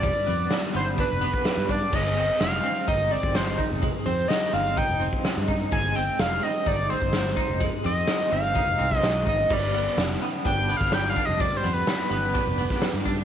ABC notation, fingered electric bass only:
X:1
M:4/4
L:1/16
Q:1/4=127
K:none
V:1 name="Fingered electric bass" clef=bass
F,,, z F,,2 z2 G,,,3 F,,,2 z2 G,,3 | G,,,4 F,,,2 z2 G,,,3 G,,,4 F,,,- | F,,, z F,,2 z2 G,,,3 F,,,2 z2 G,,3 | G,,,4 F,,,2 z2 G,,,3 G,,,4 F,,,- |
F,,, z F,,2 z2 G,,,3 F,,, C,,2 B,,,2 _A,,,2 | G,,,4 F,,,2 z2 G,,,3 G,,,4 F,,,- | F,,, z F,,2 z2 G,,,3 F,,,2 z2 G,,3 |]